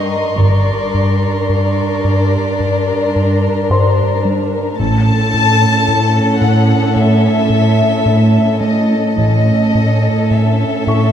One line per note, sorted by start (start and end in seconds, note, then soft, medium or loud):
0.00 0.34 G2 soft
0.00 0.16 G3 medium
0.00 0.34 D4 soft
0.00 0.34 A#4 soft
0.00 0.38 D#5 soft
0.00 4.20 A#5 soft
0.00 4.19 C6 soft
0.00 2.00 C#6 soft
0.38 1.45 G1 soft
0.38 0.72 G2 medium
0.38 4.75 G2 soft
0.38 4.74 D4 soft
0.38 4.74 A#4 soft
0.38 1.48 D5 soft
0.94 1.27 G2 soft
1.49 1.82 G2 soft
1.49 4.20 D5 medium
2.04 2.37 G2 medium
2.60 2.93 G2 soft
3.16 3.48 G2 soft
3.70 4.03 G2 medium
3.70 6.93 C5 soft
3.70 6.93 C6 soft
4.25 4.57 G3 soft
4.78 5.84 A1 soft
4.78 9.16 A2 soft
4.78 5.12 A2 medium
4.78 9.13 C#4 soft
4.78 9.14 A4 soft
4.78 6.38 A5 medium
5.34 5.66 A2 medium
5.88 6.20 A2 soft
6.41 6.74 A2 medium
6.41 6.96 F#5 medium
6.96 7.28 A2 medium
6.96 8.62 E5 medium
7.50 7.83 A2 soft
8.06 8.39 A2 medium
8.61 8.95 A3 soft
8.61 9.16 D#5 soft
9.17 10.27 A1 soft
9.17 11.12 A2 soft
9.17 9.52 A2 medium
9.17 11.12 C#4 soft
9.17 11.12 A4 soft
9.17 10.28 D#5 medium
9.75 10.09 A2 medium
10.31 10.65 A2 soft
10.31 11.12 E5 soft
10.87 11.12 A2 medium
10.87 11.12 C#6 soft